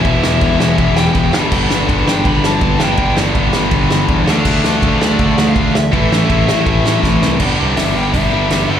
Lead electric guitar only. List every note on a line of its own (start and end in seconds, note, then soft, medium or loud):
0.06 0.75 E5 loud
0.78 0.96 E5 loud
0.96 1.33 G5 loud
2.09 2.27 G5 medium
2.27 2.45 B5 loud
2.46 2.82 A5 loud
2.80 3.14 G5 medium
5.00 5.48 D5 loud
5.48 5.73 F5 loud
5.75 6.99 E5 medium
7.77 7.96 E5 loud
7.96 8.13 G5 medium
8.13 8.67 E5 medium
8.69 8.80 A4 medium